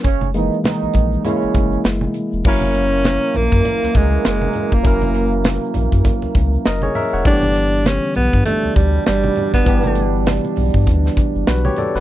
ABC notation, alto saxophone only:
X:1
M:4/4
L:1/16
Q:"Swing 16ths" 1/4=100
K:F#mix
V:1 name="Alto saxophone"
z16 | C6 A,4 G,2 G,3 A,- | A,3 z12 z | =D4 C2 B,2 =A,2 =G,2 G,3 B,- |
B,3 z12 z |]